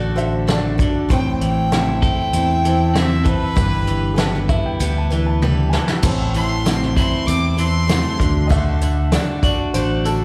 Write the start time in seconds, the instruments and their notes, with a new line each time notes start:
Already playing: fingered electric bass A1, clean electric guitar D3 F#4 A4, twelve-string acoustic guitar A3 D4 F#4 A4, upright piano A4 D5
0.16 clean electric guitar D3, twelve-string acoustic guitar D4 F#4 A4, upright piano C5 E5, closed hi-hat
0.47 twelve-string acoustic guitar A3 D4 F#4 A4, clean electric guitar D4, upright piano A4, snare, closed hi-hat
0.52 upright piano D5
0.78 clean electric guitar D3, twelve-string acoustic guitar D4 F#4 A4, kick, closed hi-hat
1.09 fingered electric bass A1, twelve-string acoustic guitar A2 E3 A3 C4 E4 A4, clean electric guitar A2, fiddle G5, kick, closed hi-hat
1.41 clean electric guitar E3, fiddle G5, closed hi-hat
1.72 twelve-string acoustic guitar A3 C4 E4 A4, clean electric guitar E4, snare, closed hi-hat
2.02 clean electric guitar A4, fiddle G5, kick, closed hi-hat
2.33 fingered electric bass E2, twelve-string acoustic guitar A3 C4 E4 A4, clean electric guitar E4, closed hi-hat
2.65 clean electric guitar E3, twelve-string acoustic guitar A3 C4 E4 A4, closed hi-hat
2.94 twelve-string acoustic guitar A3 C4 E4, clean electric guitar C4, fiddle E5, snare, closed hi-hat
2.99 twelve-string acoustic guitar A4
3.24 clean electric guitar E3, twelve-string acoustic guitar A3 C4 E4 A4, fiddle B4, kick, closed hi-hat
3.56 fingered electric bass G1, clean electric guitar G2, twelve-string acoustic guitar G3 D4 E4 B4, kick, closed hi-hat
3.87 clean electric guitar E3, closed hi-hat
4.14 twelve-string acoustic guitar G3 D4 E4, clean electric guitar B3, upright piano G#4 A4, closed hi-hat
4.18 twelve-string acoustic guitar B4, snare
4.34 snare
4.49 clean electric guitar E4, upright piano E5, kick, closed hi-hat
4.66 upright piano G5
4.80 fingered electric bass D2, twelve-string acoustic guitar G3 D4 E4 B4, clean electric guitar B3, closed hi-hat
4.98 upright piano A5
5.10 clean electric guitar E3, twelve-string acoustic guitar D4 E4 B4, closed hi-hat
5.27 upright piano A5
5.42 twelve-string acoustic guitar G3 D4 E4 B4, clean electric guitar G3, high tom
5.70 twelve-string acoustic guitar B4, upright piano G#5, snare
5.74 clean electric guitar E3, twelve-string acoustic guitar D4 E4, upright piano A5
5.88 snare
6.03 fingered electric bass A1, twelve-string acoustic guitar A2 E3 A3 C4 E4 A4, clean electric guitar A2, kick, closed hi-hat, crash, tambourine
6.34 clean electric guitar E3, fiddle C6, closed hi-hat, tambourine
6.64 twelve-string acoustic guitar A3 C4 E4 A4, clean electric guitar C4, snare, closed hi-hat, tambourine
6.82 snare
6.97 clean electric guitar E4, fiddle C6, kick, closed hi-hat, tambourine
7.26 fingered electric bass E2, twelve-string acoustic guitar A3 C4 E4 A4, clean electric guitar C4, fiddle D6, closed hi-hat, tambourine
7.57 clean electric guitar E3, twelve-string acoustic guitar A3 C4 E4 A4, fiddle C6, closed hi-hat, tambourine
7.87 twelve-string acoustic guitar A3 C4 E4 A4, clean electric guitar A3, snare, closed hi-hat, tambourine
8.17 fingered electric bass D2, clean electric guitar D3, twelve-string acoustic guitar D4 F#4 A4, kick, closed hi-hat, tambourine
8.47 twelve-string acoustic guitar D3 A3 D4 A4, clean electric guitar D3, upright piano D#5, kick, tambourine
8.51 twelve-string acoustic guitar F#4, upright piano E5, closed hi-hat
8.81 clean electric guitar D3, closed hi-hat, tambourine
9.12 twelve-string acoustic guitar A3 D4 F#4 A4, clean electric guitar D4, upright piano D5, snare, closed hi-hat, tambourine
9.43 clean electric guitar F#4, upright piano D5, kick, closed hi-hat, tambourine
9.74 fingered electric bass A1, twelve-string acoustic guitar A3 D4 F#4 A4, clean electric guitar D4, upright piano C5, closed hi-hat, tambourine
10.05 clean electric guitar D3, twelve-string acoustic guitar F#4 A4, upright piano A4, closed hi-hat, tambourine
10.09 twelve-string acoustic guitar D4